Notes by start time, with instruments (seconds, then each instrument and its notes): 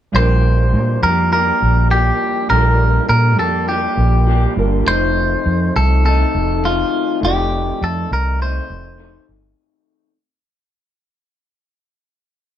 0.12 fingered electric bass A#1, clean electric guitar A#2 D3 F3 A#3 D4 C5, synth keys G3 D4 F4
0.16 clean electric guitar G4, synth keys A#4
0.73 fingered electric bass A#2
1.02 fingered electric bass F2, clean electric guitar F3 A#3 D4 G4 A#4
1.32 clean electric guitar F3 A#3 D4 G4 A#4
1.62 fingered electric bass A#1
1.91 clean electric guitar F3 A#3 D4 G4
2.49 fingered electric bass A#1, clean electric guitar A#2 D3 F3 A#3 D4 G4 A#4, synth keys G3 D4 F4
2.54 synth keys A4
2.60 synth keys A#4
3.09 fingered electric bass A#2, clean electric guitar A#4
3.38 fingered electric bass F2, clean electric guitar A#3 D4 G4 A4
3.42 clean electric guitar F3
3.68 clean electric guitar F3 A#3 D4 G4
3.97 fingered electric bass A#1
4.27 clean electric guitar F3 A#3 D4 G4
4.56 fingered electric bass G1, synth keys G3 D4 F4 A#4
4.85 fingered electric bass F1, clean electric guitar F2 C3 C5, synth keys A3 D#4 F4
4.89 clean electric guitar D#3 A3 D#4, synth keys C5
5.46 fingered electric bass F2
5.76 fingered electric bass C2, clean electric guitar A4
6.04 clean electric guitar C3 D#3 A3 D#4 A4
6.35 fingered electric bass F1
6.63 clean electric guitar C3 D#3 A3 D#4 F4
7.21 fingered electric bass F1, clean electric guitar F2 C3 D#3, synth keys A3 D#4 F4
7.25 clean electric guitar A3 D#4 G4, synth keys D5
7.82 fingered electric bass F2, clean electric guitar A4
8.11 fingered electric bass C2, clean electric guitar A#4
8.40 clean electric guitar C3 D#3 A3 D#4 C5
8.70 fingered electric bass F1
8.98 clean electric guitar C3 D#3 A3 D#4
9.29 fingered electric bass G1